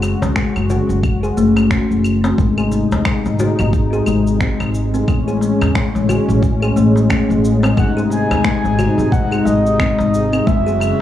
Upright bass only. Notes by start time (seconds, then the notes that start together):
Already playing: F#1
0.23 C#2
0.56 F#1
0.89 F#1
1.37 F#1
1.91 F#1
2.38 G#1
2.92 D#2
3.26 G#1
3.59 G#1
4.07 G#1
4.60 G#1
5.08 A1
5.61 E2
5.95 A1
6.28 A1
6.77 A1
7.30 A1
7.77 G#1
8.31 D#2
8.64 G#1
8.98 G#1
9.46 G#1
10.00 G#1
10.47 F#1